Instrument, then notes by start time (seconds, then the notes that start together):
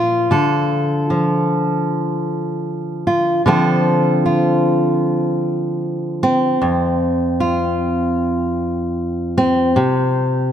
steel-string acoustic guitar
Already playing: A#2 F3 F4 A#4
0.31 D3 A4
1.10 F3
3.07 F4
3.46 D3 F3 C4 F4 A4
4.26 F4
6.23 C4
6.62 F2
7.40 F4
9.38 C4
9.76 C3